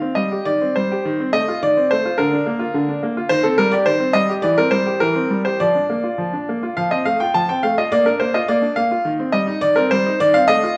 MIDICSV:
0, 0, Header, 1, 2, 480
1, 0, Start_track
1, 0, Key_signature, -2, "major"
1, 0, Tempo, 565504
1, 902, Time_signature, 4, 2, 24, 8
1, 3773, Tempo, 581395
1, 6653, Tempo, 571429
1, 9037, End_track
2, 0, Start_track
2, 0, Title_t, "Grand piano"
2, 0, Program_c, 0, 0
2, 0, Note_on_c, 0, 77, 83
2, 13, Note_on_c, 0, 60, 49
2, 129, Note_on_c, 0, 75, 77
2, 139, Note_on_c, 0, 55, 51
2, 159, Note_off_c, 0, 77, 0
2, 160, Note_off_c, 0, 60, 0
2, 269, Note_on_c, 0, 67, 53
2, 284, Note_off_c, 0, 55, 0
2, 368, Note_off_c, 0, 75, 0
2, 385, Note_on_c, 0, 74, 94
2, 390, Note_on_c, 0, 51, 59
2, 410, Note_off_c, 0, 67, 0
2, 520, Note_on_c, 0, 60, 47
2, 521, Note_off_c, 0, 51, 0
2, 642, Note_on_c, 0, 72, 86
2, 644, Note_off_c, 0, 74, 0
2, 650, Note_on_c, 0, 55, 52
2, 657, Note_off_c, 0, 60, 0
2, 778, Note_on_c, 0, 67, 55
2, 783, Note_off_c, 0, 55, 0
2, 894, Note_on_c, 0, 51, 75
2, 901, Note_off_c, 0, 67, 0
2, 1015, Note_off_c, 0, 51, 0
2, 1019, Note_on_c, 0, 60, 54
2, 1099, Note_off_c, 0, 72, 0
2, 1128, Note_on_c, 0, 75, 96
2, 1131, Note_on_c, 0, 57, 57
2, 1147, Note_off_c, 0, 60, 0
2, 1259, Note_on_c, 0, 65, 58
2, 1262, Note_off_c, 0, 57, 0
2, 1349, Note_off_c, 0, 75, 0
2, 1381, Note_on_c, 0, 51, 66
2, 1381, Note_on_c, 0, 74, 96
2, 1385, Note_off_c, 0, 65, 0
2, 1497, Note_off_c, 0, 51, 0
2, 1503, Note_on_c, 0, 60, 56
2, 1619, Note_on_c, 0, 72, 93
2, 1620, Note_off_c, 0, 74, 0
2, 1627, Note_off_c, 0, 60, 0
2, 1627, Note_on_c, 0, 57, 59
2, 1744, Note_on_c, 0, 65, 55
2, 1749, Note_off_c, 0, 57, 0
2, 1849, Note_on_c, 0, 70, 87
2, 1857, Note_off_c, 0, 72, 0
2, 1858, Note_on_c, 0, 50, 73
2, 1860, Note_off_c, 0, 65, 0
2, 1973, Note_off_c, 0, 50, 0
2, 1979, Note_on_c, 0, 62, 58
2, 2091, Note_on_c, 0, 58, 62
2, 2103, Note_off_c, 0, 62, 0
2, 2201, Note_on_c, 0, 65, 63
2, 2219, Note_off_c, 0, 58, 0
2, 2327, Note_on_c, 0, 50, 70
2, 2333, Note_off_c, 0, 65, 0
2, 2446, Note_off_c, 0, 50, 0
2, 2450, Note_on_c, 0, 62, 59
2, 2534, Note_off_c, 0, 70, 0
2, 2570, Note_on_c, 0, 58, 61
2, 2577, Note_off_c, 0, 62, 0
2, 2692, Note_on_c, 0, 65, 65
2, 2697, Note_off_c, 0, 58, 0
2, 2796, Note_on_c, 0, 72, 113
2, 2800, Note_on_c, 0, 51, 81
2, 2811, Note_off_c, 0, 65, 0
2, 2913, Note_on_c, 0, 69, 91
2, 2919, Note_on_c, 0, 60, 57
2, 2921, Note_off_c, 0, 51, 0
2, 2923, Note_off_c, 0, 72, 0
2, 3037, Note_on_c, 0, 70, 104
2, 3042, Note_off_c, 0, 69, 0
2, 3043, Note_on_c, 0, 55, 65
2, 3051, Note_off_c, 0, 60, 0
2, 3154, Note_on_c, 0, 74, 97
2, 3164, Note_off_c, 0, 70, 0
2, 3165, Note_on_c, 0, 67, 64
2, 3173, Note_off_c, 0, 55, 0
2, 3273, Note_on_c, 0, 72, 103
2, 3279, Note_on_c, 0, 51, 67
2, 3283, Note_off_c, 0, 74, 0
2, 3294, Note_off_c, 0, 67, 0
2, 3393, Note_on_c, 0, 60, 58
2, 3402, Note_off_c, 0, 51, 0
2, 3508, Note_on_c, 0, 75, 104
2, 3517, Note_on_c, 0, 55, 57
2, 3523, Note_off_c, 0, 72, 0
2, 3529, Note_off_c, 0, 60, 0
2, 3643, Note_on_c, 0, 67, 65
2, 3651, Note_off_c, 0, 55, 0
2, 3660, Note_off_c, 0, 75, 0
2, 3753, Note_on_c, 0, 74, 102
2, 3766, Note_on_c, 0, 52, 73
2, 3768, Note_off_c, 0, 67, 0
2, 3881, Note_off_c, 0, 74, 0
2, 3881, Note_on_c, 0, 70, 97
2, 3884, Note_off_c, 0, 52, 0
2, 3890, Note_on_c, 0, 60, 56
2, 3990, Note_on_c, 0, 72, 94
2, 3995, Note_on_c, 0, 55, 59
2, 4004, Note_off_c, 0, 70, 0
2, 4014, Note_off_c, 0, 60, 0
2, 4119, Note_on_c, 0, 67, 59
2, 4127, Note_off_c, 0, 55, 0
2, 4233, Note_on_c, 0, 70, 93
2, 4237, Note_off_c, 0, 72, 0
2, 4241, Note_on_c, 0, 52, 65
2, 4248, Note_off_c, 0, 67, 0
2, 4359, Note_on_c, 0, 60, 56
2, 4360, Note_off_c, 0, 52, 0
2, 4481, Note_on_c, 0, 55, 53
2, 4489, Note_off_c, 0, 60, 0
2, 4566, Note_off_c, 0, 70, 0
2, 4600, Note_on_c, 0, 72, 84
2, 4609, Note_off_c, 0, 55, 0
2, 4610, Note_on_c, 0, 67, 54
2, 4724, Note_off_c, 0, 72, 0
2, 4726, Note_on_c, 0, 74, 99
2, 4729, Note_off_c, 0, 67, 0
2, 4733, Note_on_c, 0, 53, 68
2, 4847, Note_off_c, 0, 53, 0
2, 4852, Note_on_c, 0, 62, 47
2, 4970, Note_on_c, 0, 58, 51
2, 4976, Note_off_c, 0, 62, 0
2, 5086, Note_on_c, 0, 65, 51
2, 5096, Note_off_c, 0, 58, 0
2, 5206, Note_on_c, 0, 53, 60
2, 5214, Note_off_c, 0, 65, 0
2, 5325, Note_off_c, 0, 53, 0
2, 5330, Note_on_c, 0, 62, 53
2, 5458, Note_off_c, 0, 62, 0
2, 5459, Note_on_c, 0, 58, 51
2, 5576, Note_on_c, 0, 65, 51
2, 5582, Note_off_c, 0, 58, 0
2, 5690, Note_on_c, 0, 77, 88
2, 5693, Note_off_c, 0, 74, 0
2, 5695, Note_off_c, 0, 65, 0
2, 5696, Note_on_c, 0, 53, 64
2, 5809, Note_on_c, 0, 75, 79
2, 5811, Note_off_c, 0, 53, 0
2, 5812, Note_off_c, 0, 77, 0
2, 5815, Note_on_c, 0, 60, 50
2, 5928, Note_on_c, 0, 57, 51
2, 5928, Note_on_c, 0, 77, 88
2, 5932, Note_off_c, 0, 75, 0
2, 5941, Note_off_c, 0, 60, 0
2, 6049, Note_on_c, 0, 79, 89
2, 6051, Note_off_c, 0, 77, 0
2, 6057, Note_off_c, 0, 57, 0
2, 6058, Note_on_c, 0, 65, 49
2, 6166, Note_on_c, 0, 81, 95
2, 6170, Note_on_c, 0, 53, 59
2, 6172, Note_off_c, 0, 79, 0
2, 6182, Note_off_c, 0, 65, 0
2, 6287, Note_on_c, 0, 79, 83
2, 6289, Note_off_c, 0, 53, 0
2, 6290, Note_off_c, 0, 81, 0
2, 6296, Note_on_c, 0, 60, 45
2, 6402, Note_on_c, 0, 77, 83
2, 6408, Note_on_c, 0, 57, 53
2, 6411, Note_off_c, 0, 79, 0
2, 6421, Note_off_c, 0, 60, 0
2, 6526, Note_on_c, 0, 75, 79
2, 6528, Note_off_c, 0, 77, 0
2, 6528, Note_on_c, 0, 65, 48
2, 6536, Note_off_c, 0, 57, 0
2, 6640, Note_on_c, 0, 74, 107
2, 6643, Note_on_c, 0, 58, 69
2, 6648, Note_off_c, 0, 75, 0
2, 6649, Note_off_c, 0, 65, 0
2, 6758, Note_on_c, 0, 70, 80
2, 6760, Note_on_c, 0, 62, 50
2, 6764, Note_off_c, 0, 58, 0
2, 6766, Note_off_c, 0, 74, 0
2, 6874, Note_on_c, 0, 72, 88
2, 6885, Note_on_c, 0, 58, 50
2, 6886, Note_off_c, 0, 70, 0
2, 6893, Note_off_c, 0, 62, 0
2, 6997, Note_on_c, 0, 75, 82
2, 7000, Note_on_c, 0, 65, 55
2, 7004, Note_off_c, 0, 72, 0
2, 7015, Note_off_c, 0, 58, 0
2, 7116, Note_on_c, 0, 74, 100
2, 7118, Note_on_c, 0, 58, 65
2, 7126, Note_off_c, 0, 75, 0
2, 7133, Note_off_c, 0, 65, 0
2, 7229, Note_on_c, 0, 62, 52
2, 7242, Note_off_c, 0, 58, 0
2, 7347, Note_on_c, 0, 77, 94
2, 7354, Note_on_c, 0, 58, 52
2, 7365, Note_off_c, 0, 74, 0
2, 7367, Note_off_c, 0, 62, 0
2, 7476, Note_on_c, 0, 65, 54
2, 7489, Note_off_c, 0, 58, 0
2, 7590, Note_on_c, 0, 51, 70
2, 7604, Note_off_c, 0, 65, 0
2, 7642, Note_off_c, 0, 77, 0
2, 7712, Note_on_c, 0, 60, 53
2, 7717, Note_off_c, 0, 51, 0
2, 7821, Note_on_c, 0, 75, 88
2, 7826, Note_on_c, 0, 55, 54
2, 7847, Note_off_c, 0, 60, 0
2, 7944, Note_on_c, 0, 63, 64
2, 7965, Note_off_c, 0, 55, 0
2, 8051, Note_off_c, 0, 75, 0
2, 8063, Note_on_c, 0, 74, 108
2, 8071, Note_on_c, 0, 51, 66
2, 8084, Note_off_c, 0, 63, 0
2, 8184, Note_on_c, 0, 70, 91
2, 8195, Note_on_c, 0, 60, 62
2, 8198, Note_off_c, 0, 51, 0
2, 8198, Note_off_c, 0, 74, 0
2, 8312, Note_on_c, 0, 72, 101
2, 8319, Note_off_c, 0, 70, 0
2, 8319, Note_on_c, 0, 55, 60
2, 8330, Note_off_c, 0, 60, 0
2, 8442, Note_on_c, 0, 63, 61
2, 8452, Note_off_c, 0, 55, 0
2, 8538, Note_off_c, 0, 72, 0
2, 8559, Note_on_c, 0, 74, 122
2, 8562, Note_on_c, 0, 51, 85
2, 8568, Note_off_c, 0, 63, 0
2, 8674, Note_on_c, 0, 77, 104
2, 8677, Note_on_c, 0, 60, 57
2, 8684, Note_off_c, 0, 51, 0
2, 8686, Note_off_c, 0, 74, 0
2, 8789, Note_on_c, 0, 75, 115
2, 8797, Note_on_c, 0, 57, 66
2, 8803, Note_off_c, 0, 77, 0
2, 8811, Note_off_c, 0, 60, 0
2, 8921, Note_on_c, 0, 65, 64
2, 8930, Note_off_c, 0, 57, 0
2, 9015, Note_off_c, 0, 75, 0
2, 9037, Note_off_c, 0, 65, 0
2, 9037, End_track
0, 0, End_of_file